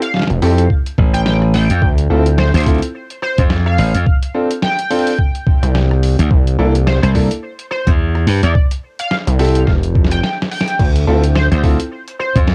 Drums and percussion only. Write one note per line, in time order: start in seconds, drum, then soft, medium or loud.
0.02 closed hi-hat medium
0.14 snare medium
0.17 snare medium
0.19 snare medium
0.22 snare medium
0.22 snare loud
0.27 snare loud
0.27 closed hi-hat medium
0.42 open hi-hat medium
0.58 closed hi-hat medium
0.70 kick medium
0.86 closed hi-hat soft
0.98 kick loud
1.14 cross-stick medium
1.14 closed hi-hat medium
1.26 snare loud
1.42 cross-stick soft
1.54 open hi-hat medium
1.70 closed hi-hat medium
1.82 kick loud
1.98 closed hi-hat medium
2.26 closed hi-hat medium
2.38 snare loud
2.54 closed hi-hat soft
2.57 closed hi-hat soft
2.60 closed hi-hat soft
2.63 kick medium
2.63 closed hi-hat soft
2.66 closed hi-hat soft
2.66 open hi-hat medium
2.75 closed hi-hat soft
2.78 closed hi-hat soft
2.82 closed hi-hat medium
3.10 closed hi-hat soft
3.22 cross-stick soft
3.38 kick loud
3.38 closed hi-hat medium
3.50 snare loud
3.66 cross-stick medium
3.78 open hi-hat medium
3.94 closed hi-hat medium
4.06 kick loud
4.22 closed hi-hat medium
4.51 closed hi-hat medium
4.62 snare loud
4.79 closed hi-hat medium
4.91 open hi-hat medium
4.99 open hi-hat soft
5.07 closed hi-hat medium
5.07 open hi-hat soft
5.13 open hi-hat soft
5.19 kick medium
5.35 closed hi-hat soft
5.47 kick loud
5.63 cross-stick medium
5.63 closed hi-hat medium
5.75 snare loud
5.91 cross-stick medium
6.03 open hi-hat medium
6.19 closed hi-hat medium
6.31 kick loud
6.47 closed hi-hat medium
6.75 closed hi-hat medium
6.87 snare loud
7.03 closed hi-hat medium
7.15 kick medium
7.15 open hi-hat medium
7.31 closed hi-hat medium
7.59 closed hi-hat soft
7.71 cross-stick soft
7.87 kick loud
7.87 closed hi-hat medium
8.15 cross-stick medium
8.27 open hi-hat medium
8.43 closed hi-hat medium
8.55 kick loud
8.71 closed hi-hat medium
8.99 closed hi-hat medium
9.11 snare loud
9.27 closed hi-hat medium
9.39 open hi-hat medium
9.45 open hi-hat soft
9.49 open hi-hat soft
9.55 closed hi-hat medium
9.67 kick medium
9.67 snare medium
9.83 closed hi-hat soft
9.95 kick loud
10.04 snare medium
10.11 closed hi-hat medium
10.23 snare medium
10.42 snare loud
10.51 open hi-hat medium
10.61 snare loud
10.68 closed hi-hat medium
10.79 kick loud
10.79 crash medium
10.96 closed hi-hat medium
11.24 closed hi-hat medium
11.36 snare loud
11.52 closed hi-hat medium
11.63 kick medium
11.63 open hi-hat medium
11.80 closed hi-hat medium
12.08 closed hi-hat soft
12.20 cross-stick soft
12.36 kick loud
12.36 closed hi-hat medium
12.48 snare loud